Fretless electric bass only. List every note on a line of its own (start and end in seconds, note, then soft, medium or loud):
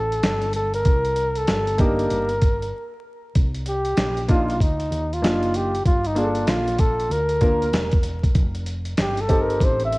0.00 0.20 A1 medium
0.23 0.82 G1 loud
0.85 1.45 C2 loud
1.49 2.08 G1 loud
2.11 2.70 G1 medium
3.36 3.95 C2 medium
3.98 4.60 A#1 medium
4.60 4.90 D2 medium
4.91 5.21 D#2 medium
5.22 5.82 F#1 medium
5.85 6.45 G1 loud
6.48 7.07 A#1 medium
7.10 7.70 D2 medium
7.73 8.32 E1 medium
8.35 8.95 F1 loud
8.98 9.58 G1 medium
9.60 9.98 A1 medium